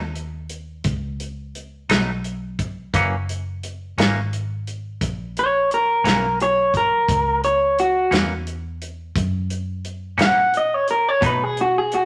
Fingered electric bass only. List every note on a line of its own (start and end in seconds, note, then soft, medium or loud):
0.00 0.82 D#2 medium
0.84 1.85 C#2 medium
1.89 2.90 B1 medium
2.94 3.94 F#1 medium
3.97 4.98 G#1 medium
5.01 6.01 A#1 medium
6.04 7.05 B1 medium
7.09 8.09 C#2 medium
8.11 9.12 E2 medium
9.16 10.16 F#2 medium
10.18 11.18 A#2 medium
11.22 12.05 B2 medium